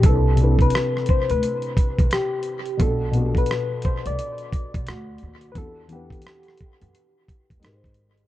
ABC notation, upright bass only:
X:1
M:4/4
L:1/16
Q:"Swing 16ths" 1/4=87
K:Bphr
V:1 name="Upright bass" clef=bass
C,,4 z3 D,, z3 C,, z4 | B,,,4 z3 C,, z3 B,,, D,,2 _E,,2 | E,,4 z3 F,, z3 E,, _A,,,4 |]